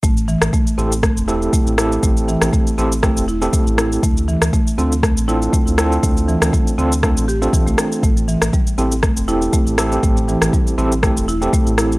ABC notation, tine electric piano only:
X:1
M:4/4
L:1/16
Q:"Swing 16ths" 1/4=120
K:Am
V:1 name="Tine electric piano"
z6 [CEGA] z3 [CEGA]4 [CEGA]2- | [CEGA]6 [CEGA] z [CEGA]2 z [CEGA]4- [CEGA] | z6 [CDFA] z3 [CDFA]4 [CDFA]2- | [CDFA]6 [CDFA] z [CDFA]2 z [CDFA]4- [CDFA] |
z6 [CEGA] z3 [CEGA]4 [CEGA]2- | [CEGA]6 [CEGA] z [CEGA]2 z [CEGA]4- [CEGA] |]